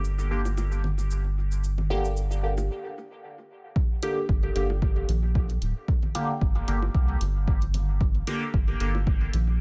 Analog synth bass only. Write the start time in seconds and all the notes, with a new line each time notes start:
Already playing: G1
4.29 G1
4.56 G1
5.09 A#1
5.62 D1
6.42 G1
6.68 G1
6.95 C2
7.21 G1
8.54 G1
8.80 G1
9.34 A#1